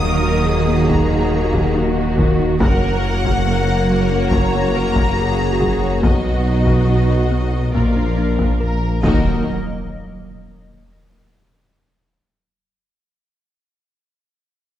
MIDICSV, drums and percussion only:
0, 0, Header, 1, 2, 480
1, 0, Start_track
1, 0, Key_signature, -6, "minor"
1, 0, Tempo, 857143
1, 1462, Time_signature, 4, 2, 24, 8
1, 8285, End_track
2, 0, Start_track
2, 0, Title_t, "Taiko and cinematic ensemble drums"
2, 502, Note_on_c, 9, 41, 76
2, 558, Note_off_c, 9, 41, 0
2, 861, Note_on_c, 9, 41, 79
2, 917, Note_off_c, 9, 41, 0
2, 1220, Note_on_c, 9, 41, 80
2, 1276, Note_off_c, 9, 41, 0
2, 1458, Note_on_c, 9, 41, 109
2, 1514, Note_off_c, 9, 41, 0
2, 1820, Note_on_c, 9, 41, 71
2, 1876, Note_off_c, 9, 41, 0
2, 2421, Note_on_c, 9, 41, 74
2, 2477, Note_off_c, 9, 41, 0
2, 2778, Note_on_c, 9, 41, 79
2, 2834, Note_off_c, 9, 41, 0
2, 3139, Note_on_c, 9, 41, 68
2, 3195, Note_off_c, 9, 41, 0
2, 3377, Note_on_c, 9, 41, 92
2, 3433, Note_off_c, 9, 41, 0
2, 3737, Note_on_c, 9, 41, 68
2, 3793, Note_off_c, 9, 41, 0
2, 4338, Note_on_c, 9, 41, 76
2, 4394, Note_off_c, 9, 41, 0
2, 4697, Note_on_c, 9, 41, 72
2, 4753, Note_off_c, 9, 41, 0
2, 5058, Note_on_c, 9, 41, 87
2, 5114, Note_off_c, 9, 41, 0
2, 8285, End_track
0, 0, End_of_file